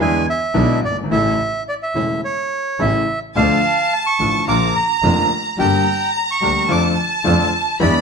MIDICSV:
0, 0, Header, 1, 6, 480
1, 0, Start_track
1, 0, Key_signature, -1, "minor"
1, 0, Tempo, 557621
1, 952, Time_signature, 4, 2, 24, 8
1, 6896, End_track
2, 0, Start_track
2, 0, Title_t, "Violin section"
2, 0, Program_c, 0, 48
2, 2879, Note_on_c, 0, 81, 99
2, 3812, Note_off_c, 0, 81, 0
2, 3846, Note_on_c, 0, 82, 98
2, 4798, Note_off_c, 0, 82, 0
2, 4808, Note_on_c, 0, 82, 99
2, 5727, Note_off_c, 0, 82, 0
2, 5758, Note_on_c, 0, 81, 106
2, 6714, Note_off_c, 0, 81, 0
2, 6715, Note_on_c, 0, 83, 109
2, 6896, Note_off_c, 0, 83, 0
2, 6896, End_track
3, 0, Start_track
3, 0, Title_t, "Bandoneon"
3, 0, Program_c, 1, 23
3, 13, Note_on_c, 1, 80, 103
3, 227, Note_off_c, 1, 80, 0
3, 256, Note_on_c, 1, 76, 91
3, 690, Note_off_c, 1, 76, 0
3, 731, Note_on_c, 1, 74, 84
3, 835, Note_off_c, 1, 74, 0
3, 965, Note_on_c, 1, 76, 98
3, 1407, Note_off_c, 1, 76, 0
3, 1452, Note_on_c, 1, 74, 88
3, 1503, Note_off_c, 1, 74, 0
3, 1573, Note_on_c, 1, 76, 87
3, 1902, Note_off_c, 1, 76, 0
3, 1932, Note_on_c, 1, 73, 96
3, 2419, Note_on_c, 1, 76, 92
3, 2425, Note_off_c, 1, 73, 0
3, 2751, Note_off_c, 1, 76, 0
3, 2898, Note_on_c, 1, 77, 102
3, 3382, Note_on_c, 1, 81, 101
3, 3389, Note_off_c, 1, 77, 0
3, 3433, Note_off_c, 1, 81, 0
3, 3500, Note_on_c, 1, 85, 107
3, 3830, Note_off_c, 1, 85, 0
3, 3863, Note_on_c, 1, 86, 111
3, 4080, Note_off_c, 1, 86, 0
3, 4096, Note_on_c, 1, 82, 95
3, 4538, Note_off_c, 1, 82, 0
3, 4818, Note_on_c, 1, 79, 92
3, 5256, Note_off_c, 1, 79, 0
3, 5314, Note_on_c, 1, 82, 91
3, 5361, Note_off_c, 1, 82, 0
3, 5432, Note_on_c, 1, 85, 105
3, 5781, Note_on_c, 1, 86, 104
3, 5786, Note_off_c, 1, 85, 0
3, 5883, Note_off_c, 1, 86, 0
3, 6020, Note_on_c, 1, 81, 87
3, 6454, Note_off_c, 1, 81, 0
3, 6730, Note_on_c, 1, 74, 92
3, 6896, Note_off_c, 1, 74, 0
3, 6896, End_track
4, 0, Start_track
4, 0, Title_t, "Bandoneon"
4, 0, Program_c, 2, 23
4, 0, Note_on_c, 2, 62, 85
4, 0, Note_on_c, 2, 64, 84
4, 0, Note_on_c, 2, 68, 107
4, 194, Note_off_c, 2, 62, 0
4, 195, Note_off_c, 2, 64, 0
4, 196, Note_off_c, 2, 68, 0
4, 466, Note_on_c, 2, 62, 89
4, 467, Note_on_c, 2, 64, 78
4, 468, Note_on_c, 2, 68, 103
4, 670, Note_off_c, 2, 62, 0
4, 671, Note_off_c, 2, 64, 0
4, 671, Note_off_c, 2, 68, 0
4, 952, Note_on_c, 2, 61, 72
4, 954, Note_on_c, 2, 64, 77
4, 955, Note_on_c, 2, 69, 91
4, 1154, Note_off_c, 2, 61, 0
4, 1155, Note_off_c, 2, 64, 0
4, 1156, Note_off_c, 2, 69, 0
4, 1675, Note_on_c, 2, 61, 54
4, 1679, Note_on_c, 2, 64, 44
4, 1681, Note_on_c, 2, 69, 54
4, 1878, Note_off_c, 2, 61, 0
4, 1880, Note_off_c, 2, 64, 0
4, 1881, Note_off_c, 2, 69, 0
4, 2401, Note_on_c, 2, 61, 84
4, 2401, Note_on_c, 2, 64, 71
4, 2403, Note_on_c, 2, 69, 90
4, 2607, Note_off_c, 2, 61, 0
4, 2607, Note_off_c, 2, 64, 0
4, 2608, Note_off_c, 2, 69, 0
4, 2887, Note_on_c, 2, 65, 68
4, 2888, Note_on_c, 2, 62, 80
4, 2891, Note_on_c, 2, 69, 89
4, 3090, Note_off_c, 2, 62, 0
4, 3090, Note_off_c, 2, 65, 0
4, 3092, Note_off_c, 2, 69, 0
4, 3610, Note_on_c, 2, 62, 59
4, 3612, Note_on_c, 2, 65, 53
4, 3613, Note_on_c, 2, 69, 64
4, 3812, Note_off_c, 2, 62, 0
4, 3813, Note_off_c, 2, 65, 0
4, 3814, Note_off_c, 2, 69, 0
4, 3846, Note_on_c, 2, 62, 84
4, 3848, Note_on_c, 2, 65, 79
4, 3851, Note_on_c, 2, 70, 95
4, 4050, Note_off_c, 2, 62, 0
4, 4051, Note_off_c, 2, 65, 0
4, 4052, Note_off_c, 2, 70, 0
4, 4328, Note_on_c, 2, 62, 88
4, 4330, Note_on_c, 2, 65, 76
4, 4333, Note_on_c, 2, 70, 92
4, 4530, Note_off_c, 2, 62, 0
4, 4531, Note_off_c, 2, 65, 0
4, 4532, Note_off_c, 2, 70, 0
4, 4807, Note_on_c, 2, 62, 76
4, 4808, Note_on_c, 2, 67, 66
4, 4812, Note_on_c, 2, 70, 85
4, 5008, Note_off_c, 2, 62, 0
4, 5008, Note_off_c, 2, 67, 0
4, 5010, Note_off_c, 2, 70, 0
4, 5524, Note_on_c, 2, 62, 58
4, 5524, Note_on_c, 2, 67, 56
4, 5528, Note_on_c, 2, 70, 65
4, 5723, Note_off_c, 2, 62, 0
4, 5724, Note_off_c, 2, 67, 0
4, 5726, Note_off_c, 2, 70, 0
4, 5759, Note_on_c, 2, 62, 89
4, 5760, Note_on_c, 2, 65, 83
4, 5762, Note_on_c, 2, 69, 93
4, 5960, Note_off_c, 2, 62, 0
4, 5961, Note_off_c, 2, 65, 0
4, 5962, Note_off_c, 2, 69, 0
4, 6234, Note_on_c, 2, 62, 80
4, 6234, Note_on_c, 2, 65, 72
4, 6235, Note_on_c, 2, 69, 97
4, 6436, Note_off_c, 2, 62, 0
4, 6436, Note_off_c, 2, 65, 0
4, 6436, Note_off_c, 2, 69, 0
4, 6718, Note_on_c, 2, 62, 79
4, 6720, Note_on_c, 2, 64, 75
4, 6722, Note_on_c, 2, 68, 92
4, 6896, Note_off_c, 2, 62, 0
4, 6896, Note_off_c, 2, 64, 0
4, 6896, Note_off_c, 2, 68, 0
4, 6896, End_track
5, 0, Start_track
5, 0, Title_t, "Grand piano"
5, 0, Program_c, 3, 0
5, 0, Note_on_c, 3, 40, 83
5, 0, Note_on_c, 3, 50, 76
5, 0, Note_on_c, 3, 52, 89
5, 0, Note_on_c, 3, 56, 72
5, 0, Note_on_c, 3, 59, 68
5, 0, Note_on_c, 3, 64, 81
5, 195, Note_off_c, 3, 40, 0
5, 195, Note_off_c, 3, 50, 0
5, 196, Note_off_c, 3, 56, 0
5, 196, Note_off_c, 3, 59, 0
5, 197, Note_off_c, 3, 52, 0
5, 197, Note_off_c, 3, 64, 0
5, 466, Note_on_c, 3, 50, 76
5, 467, Note_on_c, 3, 56, 69
5, 468, Note_on_c, 3, 35, 92
5, 468, Note_on_c, 3, 47, 97
5, 470, Note_on_c, 3, 59, 69
5, 471, Note_on_c, 3, 64, 92
5, 670, Note_off_c, 3, 50, 0
5, 671, Note_off_c, 3, 35, 0
5, 671, Note_off_c, 3, 47, 0
5, 671, Note_off_c, 3, 56, 0
5, 672, Note_off_c, 3, 59, 0
5, 673, Note_off_c, 3, 64, 0
5, 772, Note_on_c, 3, 30, 57
5, 831, Note_on_c, 3, 31, 72
5, 832, Note_off_c, 3, 30, 0
5, 892, Note_off_c, 3, 31, 0
5, 892, Note_on_c, 3, 32, 82
5, 952, Note_off_c, 3, 32, 0
5, 956, Note_on_c, 3, 49, 75
5, 957, Note_on_c, 3, 45, 98
5, 959, Note_on_c, 3, 33, 93
5, 959, Note_on_c, 3, 52, 70
5, 960, Note_on_c, 3, 57, 66
5, 960, Note_on_c, 3, 64, 85
5, 1156, Note_off_c, 3, 49, 0
5, 1157, Note_off_c, 3, 45, 0
5, 1158, Note_off_c, 3, 33, 0
5, 1158, Note_off_c, 3, 52, 0
5, 1158, Note_off_c, 3, 57, 0
5, 1158, Note_off_c, 3, 64, 0
5, 1675, Note_on_c, 3, 49, 51
5, 1678, Note_on_c, 3, 28, 60
5, 1678, Note_on_c, 3, 40, 62
5, 1678, Note_on_c, 3, 52, 50
5, 1679, Note_on_c, 3, 57, 46
5, 1683, Note_on_c, 3, 64, 55
5, 1879, Note_off_c, 3, 49, 0
5, 1880, Note_off_c, 3, 28, 0
5, 1880, Note_off_c, 3, 40, 0
5, 1880, Note_off_c, 3, 52, 0
5, 1881, Note_off_c, 3, 57, 0
5, 1882, Note_off_c, 3, 64, 0
5, 2406, Note_on_c, 3, 33, 80
5, 2406, Note_on_c, 3, 49, 74
5, 2407, Note_on_c, 3, 45, 91
5, 2407, Note_on_c, 3, 52, 61
5, 2408, Note_on_c, 3, 57, 63
5, 2410, Note_on_c, 3, 64, 87
5, 2609, Note_off_c, 3, 49, 0
5, 2610, Note_off_c, 3, 33, 0
5, 2610, Note_off_c, 3, 45, 0
5, 2610, Note_off_c, 3, 52, 0
5, 2610, Note_off_c, 3, 57, 0
5, 2611, Note_off_c, 3, 64, 0
5, 2890, Note_on_c, 3, 50, 84
5, 2893, Note_on_c, 3, 53, 66
5, 2894, Note_on_c, 3, 38, 91
5, 2894, Note_on_c, 3, 57, 67
5, 2896, Note_on_c, 3, 65, 82
5, 3093, Note_off_c, 3, 38, 0
5, 3093, Note_off_c, 3, 50, 0
5, 3093, Note_off_c, 3, 53, 0
5, 3093, Note_off_c, 3, 57, 0
5, 3094, Note_off_c, 3, 65, 0
5, 3608, Note_on_c, 3, 50, 55
5, 3610, Note_on_c, 3, 53, 45
5, 3611, Note_on_c, 3, 33, 58
5, 3611, Note_on_c, 3, 45, 55
5, 3611, Note_on_c, 3, 57, 45
5, 3614, Note_on_c, 3, 65, 52
5, 3811, Note_off_c, 3, 50, 0
5, 3812, Note_off_c, 3, 53, 0
5, 3813, Note_off_c, 3, 33, 0
5, 3813, Note_off_c, 3, 45, 0
5, 3813, Note_off_c, 3, 57, 0
5, 3814, Note_off_c, 3, 65, 0
5, 3850, Note_on_c, 3, 50, 71
5, 3851, Note_on_c, 3, 53, 66
5, 3852, Note_on_c, 3, 46, 82
5, 3854, Note_on_c, 3, 58, 64
5, 3855, Note_on_c, 3, 34, 92
5, 3855, Note_on_c, 3, 65, 75
5, 4052, Note_off_c, 3, 50, 0
5, 4052, Note_off_c, 3, 53, 0
5, 4053, Note_off_c, 3, 46, 0
5, 4053, Note_off_c, 3, 58, 0
5, 4054, Note_off_c, 3, 34, 0
5, 4054, Note_off_c, 3, 65, 0
5, 4330, Note_on_c, 3, 50, 76
5, 4331, Note_on_c, 3, 29, 92
5, 4332, Note_on_c, 3, 53, 70
5, 4332, Note_on_c, 3, 58, 72
5, 4333, Note_on_c, 3, 41, 82
5, 4336, Note_on_c, 3, 65, 83
5, 4530, Note_off_c, 3, 50, 0
5, 4531, Note_off_c, 3, 29, 0
5, 4532, Note_off_c, 3, 41, 0
5, 4532, Note_off_c, 3, 53, 0
5, 4532, Note_off_c, 3, 58, 0
5, 4534, Note_off_c, 3, 65, 0
5, 4803, Note_on_c, 3, 50, 75
5, 4807, Note_on_c, 3, 31, 89
5, 4808, Note_on_c, 3, 55, 73
5, 4809, Note_on_c, 3, 58, 66
5, 4811, Note_on_c, 3, 43, 89
5, 4811, Note_on_c, 3, 67, 85
5, 5005, Note_off_c, 3, 50, 0
5, 5008, Note_off_c, 3, 31, 0
5, 5008, Note_off_c, 3, 55, 0
5, 5008, Note_off_c, 3, 58, 0
5, 5009, Note_off_c, 3, 43, 0
5, 5009, Note_off_c, 3, 67, 0
5, 5519, Note_on_c, 3, 50, 63
5, 5521, Note_on_c, 3, 38, 59
5, 5522, Note_on_c, 3, 55, 49
5, 5523, Note_on_c, 3, 58, 49
5, 5523, Note_on_c, 3, 67, 59
5, 5722, Note_off_c, 3, 38, 0
5, 5722, Note_off_c, 3, 50, 0
5, 5723, Note_off_c, 3, 55, 0
5, 5723, Note_off_c, 3, 58, 0
5, 5723, Note_off_c, 3, 67, 0
5, 5752, Note_on_c, 3, 50, 75
5, 5755, Note_on_c, 3, 53, 92
5, 5757, Note_on_c, 3, 41, 88
5, 5757, Note_on_c, 3, 57, 66
5, 5758, Note_on_c, 3, 65, 86
5, 5957, Note_off_c, 3, 50, 0
5, 5959, Note_off_c, 3, 41, 0
5, 5959, Note_off_c, 3, 53, 0
5, 5959, Note_off_c, 3, 57, 0
5, 5960, Note_off_c, 3, 65, 0
5, 6233, Note_on_c, 3, 50, 77
5, 6237, Note_on_c, 3, 53, 92
5, 6239, Note_on_c, 3, 41, 85
5, 6239, Note_on_c, 3, 57, 77
5, 6239, Note_on_c, 3, 65, 83
5, 6436, Note_off_c, 3, 50, 0
5, 6438, Note_off_c, 3, 53, 0
5, 6439, Note_off_c, 3, 41, 0
5, 6439, Note_off_c, 3, 57, 0
5, 6439, Note_off_c, 3, 65, 0
5, 6711, Note_on_c, 3, 50, 77
5, 6713, Note_on_c, 3, 56, 69
5, 6714, Note_on_c, 3, 40, 92
5, 6714, Note_on_c, 3, 52, 94
5, 6715, Note_on_c, 3, 59, 72
5, 6717, Note_on_c, 3, 64, 80
5, 6896, Note_off_c, 3, 40, 0
5, 6896, Note_off_c, 3, 50, 0
5, 6896, Note_off_c, 3, 52, 0
5, 6896, Note_off_c, 3, 56, 0
5, 6896, Note_off_c, 3, 59, 0
5, 6896, Note_off_c, 3, 64, 0
5, 6896, End_track
6, 0, Start_track
6, 0, Title_t, "Double bass"
6, 0, Program_c, 4, 43
6, 0, Note_on_c, 4, 40, 104
6, 192, Note_off_c, 4, 40, 0
6, 468, Note_on_c, 4, 35, 100
6, 671, Note_off_c, 4, 35, 0
6, 709, Note_on_c, 4, 31, 61
6, 944, Note_off_c, 4, 31, 0
6, 949, Note_on_c, 4, 33, 101
6, 1153, Note_off_c, 4, 33, 0
6, 1677, Note_on_c, 4, 28, 67
6, 1879, Note_off_c, 4, 28, 0
6, 2406, Note_on_c, 4, 33, 95
6, 2609, Note_off_c, 4, 33, 0
6, 2892, Note_on_c, 4, 38, 106
6, 3092, Note_off_c, 4, 38, 0
6, 3613, Note_on_c, 4, 33, 62
6, 3814, Note_off_c, 4, 33, 0
6, 3847, Note_on_c, 4, 34, 101
6, 4050, Note_off_c, 4, 34, 0
6, 4326, Note_on_c, 4, 29, 108
6, 4528, Note_off_c, 4, 29, 0
6, 4802, Note_on_c, 4, 31, 97
6, 5005, Note_off_c, 4, 31, 0
6, 5519, Note_on_c, 4, 38, 68
6, 5721, Note_off_c, 4, 38, 0
6, 5759, Note_on_c, 4, 41, 98
6, 5960, Note_off_c, 4, 41, 0
6, 6235, Note_on_c, 4, 41, 99
6, 6437, Note_off_c, 4, 41, 0
6, 6719, Note_on_c, 4, 40, 110
6, 6896, Note_off_c, 4, 40, 0
6, 6896, End_track
0, 0, End_of_file